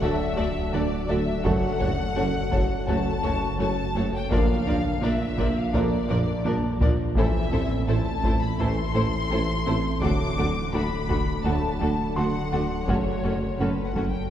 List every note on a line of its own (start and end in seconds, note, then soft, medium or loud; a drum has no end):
0.00 1.47 D1 medium
0.00 0.10 D2 medium
0.00 0.17 D2 medium
0.00 0.11 D2 medium
0.00 1.45 F#3 medium
0.00 0.27 F#3 medium
0.00 1.41 A3 medium
0.00 0.09 A3 medium
0.00 0.27 A3 medium
0.00 0.27 D4 medium
0.00 1.05 F#4 soft
0.00 0.09 F#4 medium
0.00 1.41 A4 medium
0.00 0.10 A4 medium
0.00 0.27 A4 medium
0.00 2.13 A4 medium
0.00 1.45 D5 medium
0.00 0.10 D5 medium
0.00 0.73 E5 medium
0.00 1.06 F#5 medium
0.00 taiko low medium
0.37 0.52 D2 medium
0.37 0.46 D2 medium
0.37 0.47 D2 medium
0.37 0.45 A3 medium
0.37 0.59 A3 medium
0.37 0.45 F#4 medium
0.37 0.45 A4 medium
0.37 0.45 D5 medium
0.37 taiko low soft
0.73 0.82 D2 medium
0.73 0.88 D2 medium
0.73 0.83 D2 medium
0.73 0.95 D3 medium
0.73 0.81 A3 medium
0.73 0.81 F#4 medium
0.73 0.81 A4 medium
0.73 0.81 D5 medium
0.73 1.09 D5 medium
1.08 1.23 D2 medium
1.08 1.18 D2 medium
1.08 1.31 F#3 medium
1.08 1.17 A3 medium
1.08 1.17 F#4 medium
1.08 1.17 A4 medium
1.08 1.17 D5 medium
1.08 1.45 E5 medium
1.44 1.59 F#1 medium
1.44 4.32 F#1 medium
1.44 1.54 F#1 medium
1.44 1.53 F#2 medium
1.44 4.31 C#3 medium
1.44 1.70 F#3 medium
1.44 1.66 F#3 medium
1.44 1.52 A3 medium
1.44 1.70 A3 medium
1.44 4.26 A3 medium
1.44 1.70 C#4 medium
1.44 1.52 F#4 medium
1.44 1.52 A4 medium
1.44 4.26 A4 medium
1.44 1.70 A4 medium
1.44 1.52 C#5 medium
1.44 4.31 C#5 medium
1.44 2.88 F#5 loud
1.44 taiko loud
1.79 1.89 F#1 medium
1.79 1.95 F#1 medium
1.79 1.89 F#2 medium
1.79 1.89 A3 medium
1.79 2.02 A3 medium
1.79 1.89 F#4 medium
1.79 1.87 A4 medium
1.79 1.87 C#5 medium
1.79 taiko low soft
2.15 2.31 F#1 medium
2.15 2.25 F#1 medium
2.15 2.25 F#2 medium
2.15 2.25 A3 medium
2.15 2.38 C#4 medium
2.15 2.24 F#4 medium
2.15 2.23 A4 medium
2.15 2.23 C#5 medium
2.51 2.60 F#1 medium
2.51 2.67 F#1 medium
2.51 2.61 F#2 medium
2.51 2.73 F#3 loud
2.51 2.60 A3 medium
2.51 2.60 F#4 medium
2.51 2.59 A4 medium
2.51 2.59 C#5 medium
2.51 taiko medium
2.87 3.02 F#1 medium
2.87 2.96 F#1 medium
2.87 2.97 F#2 medium
2.87 3.12 F#3 medium
2.87 3.12 A3 medium
2.87 2.96 A3 medium
2.87 3.13 C#4 medium
2.87 2.96 F#4 medium
2.87 2.95 A4 medium
2.87 3.14 A4 medium
2.87 2.95 C#5 medium
2.87 3.57 A5 loud
2.87 taiko low medium
3.23 3.32 F#1 medium
3.23 3.38 F#1 medium
3.23 3.32 F#2 medium
3.23 3.33 A3 medium
3.23 3.45 C#4 medium
3.23 3.33 F#4 medium
3.23 3.31 A4 medium
3.23 3.31 C#5 medium
3.23 5.34 C#6 soft
3.23 taiko low soft
3.59 3.67 F#1 medium
3.59 3.74 F#1 medium
3.59 3.68 F#2 medium
3.59 3.81 F#3 medium
3.59 3.68 A3 medium
3.59 3.68 F#4 medium
3.59 3.68 A4 medium
3.59 3.67 C#5 medium
3.59 4.12 A5 medium
3.95 4.03 F#1 medium
3.95 4.09 F#1 medium
3.95 4.03 F#2 medium
3.95 4.16 A3 medium
3.95 4.04 A3 medium
3.95 4.04 F#4 medium
3.95 4.03 A4 medium
3.95 4.03 C#5 medium
4.15 4.31 G5 medium
4.31 7.18 A#1 medium
4.31 4.39 A#1 medium
4.31 4.46 A#1 medium
4.31 4.40 A#2 medium
4.31 4.56 D3 medium
4.31 4.39 F3 medium
4.31 4.56 F3 medium
4.31 7.17 F3 medium
4.31 4.52 A#3 medium
4.31 7.17 A#3 medium
4.31 4.39 D4 medium
4.31 4.56 D4 medium
4.31 7.17 F4 medium
4.31 4.39 A#4 medium
4.31 4.56 A#4 medium
4.31 4.39 D5 medium
4.31 7.17 D5 medium
4.31 5.01 F5 medium
4.31 taiko medium
4.66 4.74 A#1 medium
4.66 4.81 A#1 medium
4.66 4.75 A#2 medium
4.66 4.76 F3 medium
4.66 4.88 D4 medium
4.66 4.76 D4 medium
4.66 4.75 A#4 medium
4.66 4.75 D5 medium
4.66 taiko low soft
5.02 5.10 A#1 medium
5.02 5.17 A#1 medium
5.02 5.10 A#2 medium
5.02 5.11 F3 medium
5.02 5.10 D4 medium
5.02 5.24 F4 medium
5.02 5.11 A#4 medium
5.02 5.11 D5 medium
5.02 5.56 E5 medium
5.37 5.45 A#1 medium
5.37 5.52 A#1 medium
5.37 5.46 A#2 medium
5.37 5.46 F3 medium
5.37 5.59 A#3 medium
5.37 5.46 D4 medium
5.37 5.46 A#4 medium
5.37 5.46 D5 medium
5.37 taiko medium
5.58 5.74 F5 medium
5.73 5.82 A#1 medium
5.73 5.88 A#1 medium
5.73 5.81 A#2 medium
5.73 5.99 D3 medium
5.73 5.98 F3 medium
5.73 5.82 F3 medium
5.73 5.82 D4 medium
5.73 5.99 D4 medium
5.73 5.81 A#4 medium
5.73 5.99 A#4 medium
5.73 5.82 D5 medium
5.73 6.81 D5 medium
5.73 taiko low medium
6.09 6.17 A#1 medium
6.09 6.24 A#1 medium
6.09 6.17 A#2 medium
6.09 6.17 F3 medium
6.09 6.17 D4 medium
6.09 6.31 F4 medium
6.09 6.18 A#4 medium
6.09 6.17 D5 medium
6.09 taiko low-mid medium
6.44 6.52 A#1 medium
6.44 6.59 A#1 medium
6.44 6.53 A#2 medium
6.44 6.53 F3 medium
6.44 6.66 A#3 medium
6.44 6.53 D4 medium
6.44 6.54 A#4 medium
6.44 6.54 D5 medium
6.44 8.55 A5 medium
6.44 taiko high medium
6.81 6.89 A#1 medium
6.81 6.95 A#1 medium
6.81 6.89 A#2 medium
6.81 6.90 F3 medium
6.81 7.02 D4 medium
6.81 6.90 D4 medium
6.81 6.89 A#4 medium
6.81 6.89 D5 medium
6.81 taiko low medium
7.16 7.24 A1 medium
7.16 7.31 A1 medium
7.16 10.03 A1 medium
7.16 7.24 A2 medium
7.16 7.41 E3 medium
7.16 10.02 E3 medium
7.16 12.87 A3 medium
7.16 7.41 A3 medium
7.16 7.38 A3 medium
7.16 7.25 A3 medium
7.16 7.25 E4 medium
7.16 7.41 A4 medium
7.16 12.86 A4 medium
7.16 7.26 A4 medium
7.16 7.26 C5 medium
7.16 10.02 E5 medium
7.16 7.84 E5 loud
7.16 taiko loud
7.52 7.60 A1 medium
7.52 7.66 A1 medium
7.52 7.60 A2 medium
7.52 7.61 A3 medium
7.52 7.74 C4 medium
7.52 7.60 E4 medium
7.52 7.60 A4 medium
7.52 7.61 C5 medium
7.52 taiko low soft
7.87 7.96 A1 medium
7.87 8.02 A1 medium
7.87 7.96 A2 medium
7.87 7.96 A3 medium
7.87 8.09 E4 medium
7.87 7.96 E4 medium
7.87 7.96 A4 medium
7.87 7.96 C5 medium
7.87 8.40 A5 medium
8.23 8.31 A1 medium
8.23 8.38 A1 medium
8.23 8.31 A2 medium
8.23 8.45 A3 medium
8.23 8.32 A3 medium
8.23 8.32 E4 medium
8.23 8.32 A4 medium
8.23 8.32 C5 medium
8.23 taiko medium
8.42 8.60 B5 medium
8.58 8.66 A1 medium
8.58 8.74 A1 medium
8.58 8.68 A2 medium
8.58 8.84 E3 medium
8.58 8.67 A3 medium
8.58 8.85 A3 medium
8.58 8.68 E4 medium
8.58 8.68 A4 medium
8.58 8.85 A4 medium
8.58 8.68 C5 medium
8.58 10.02 C6 loud
8.58 taiko low medium
8.94 9.03 A1 medium
8.94 9.09 A1 medium
8.94 9.03 A2 medium
8.94 9.03 A3 medium
8.94 9.16 E4 medium
8.94 9.03 E4 medium
8.94 9.03 A4 medium
8.94 9.02 C5 medium
8.94 taiko low soft
9.30 9.45 A1 medium
9.30 9.39 A1 medium
9.30 9.39 A2 medium
9.30 9.38 A3 medium
9.30 9.52 A3 medium
9.30 9.39 E4 medium
9.30 9.39 A4 medium
9.30 9.39 C5 medium
9.66 9.80 A1 medium
9.66 9.74 A1 medium
9.66 9.74 A2 medium
9.66 9.74 A3 medium
9.66 9.88 C4 medium
9.66 9.74 E4 medium
9.66 9.75 A4 medium
9.66 9.74 C5 medium
10.01 12.90 D1 medium
10.01 10.16 D2 medium
10.01 10.10 D2 medium
10.01 10.27 D3 medium
10.01 10.23 D3 medium
10.01 14.30 F#3 medium
10.01 10.27 F#3 medium
10.01 10.09 A3 medium
10.01 10.28 A3 medium
10.01 10.09 D4 medium
10.01 10.10 F#4 medium
10.01 10.11 A4 medium
10.01 10.28 A4 medium
10.01 12.87 D5 medium
10.01 10.72 D6 loud
10.01 taiko medium
10.37 10.52 D2 medium
10.37 10.46 D2 medium
10.37 10.59 F#3 medium
10.37 10.46 A3 medium
10.37 10.46 D4 medium
10.37 10.46 F#4 medium
10.37 10.46 A4 medium
10.37 taiko low soft
10.73 10.81 D2 medium
10.73 10.88 D2 medium
10.73 10.81 A3 medium
10.73 10.95 A3 medium
10.73 10.81 D4 medium
10.73 10.81 F#4 medium
10.73 10.82 A4 medium
10.73 11.43 B5 loud
11.09 11.17 D2 medium
11.09 11.23 D2 medium
11.09 11.17 D2 medium
11.09 11.30 D3 medium
11.09 11.17 A3 medium
11.09 11.17 D4 medium
11.09 11.17 F#4 medium
11.09 11.17 A4 medium
11.09 taiko medium
11.44 11.59 D2 medium
11.44 11.53 D2 medium
11.44 11.70 D3 medium
11.44 11.70 F#3 medium
11.44 11.53 A3 medium
11.44 11.70 A3 medium
11.44 11.53 D4 medium
11.44 11.53 F#4 medium
11.44 11.53 A4 medium
11.44 11.70 A4 medium
11.44 12.16 A5 medium
11.44 taiko low soft
11.80 11.94 D2 medium
11.80 11.88 D2 medium
11.80 11.89 D2 medium
11.80 11.88 A3 medium
11.80 12.02 A3 medium
11.80 11.88 D4 medium
11.80 11.89 F#4 medium
11.80 11.89 A4 medium
11.80 taiko low soft
12.16 12.24 D2 medium
12.16 12.31 D2 medium
12.16 12.25 D2 medium
12.16 12.38 D3 medium
12.16 12.24 A3 medium
12.16 12.24 D4 medium
12.16 12.24 F#4 medium
12.16 12.24 A4 medium
12.16 12.86 F#5 medium
12.16 14.27 C6 medium
12.52 12.60 D2 medium
12.52 12.66 D2 medium
12.52 12.60 D2 medium
12.52 12.73 F#3 medium
12.52 12.61 A3 medium
12.52 12.61 D4 medium
12.52 12.60 F#4 medium
12.52 12.60 A4 medium
12.87 12.96 F#1 medium
12.87 13.02 F#1 medium
12.87 14.30 F#1 medium
12.87 12.96 F#2 medium
12.87 13.13 C#3 medium
12.87 13.09 F#3 medium
12.87 13.13 F#3 medium
12.87 12.96 A3 medium
12.87 14.30 A3 medium
12.87 13.13 A3 medium
12.87 12.96 C#4 medium
12.87 12.96 F#4 medium
12.87 14.30 A4 medium
12.87 13.13 A4 medium
12.87 12.97 A4 medium
12.87 14.30 C#5 medium
12.87 13.59 C#5 medium
12.87 taiko medium
13.23 13.31 F#1 medium
13.23 13.38 F#1 medium
13.23 13.32 F#2 medium
13.23 13.45 A3 medium
13.23 13.33 A3 medium
13.23 13.32 C#4 medium
13.23 13.32 F#4 medium
13.23 13.32 A4 medium
13.58 13.66 F#1 medium
13.58 13.74 F#1 medium
13.58 13.68 F#2 medium
13.58 13.68 A3 soft
13.58 13.81 C#4 medium
13.58 13.68 C#4 medium
13.58 13.68 F#4 medium
13.58 13.67 A4 medium
13.58 13.83 B4 medium
13.85 14.08 F#5 medium
13.94 14.02 F#1 medium
13.94 14.09 F#1 medium
13.94 14.03 F#2 medium
13.94 14.17 F#3 medium
13.94 14.04 A3 soft
13.94 14.04 C#4 soft
13.94 14.03 F#4 soft
13.94 14.03 A4 soft
13.94 taiko medium
14.09 14.30 G5 medium